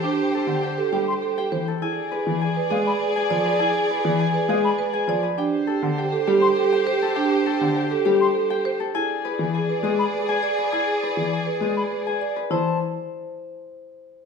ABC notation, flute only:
X:1
M:3/4
L:1/16
Q:1/4=101
K:Ephr
V:1 name="Flute"
z6 g c' z4 | z6 f b z4 | z6 f b z4 | z6 z c' z4 |
z6 z c' z4 | z6 z b z4 | z6 z b z4 | a2 z8 z2 |]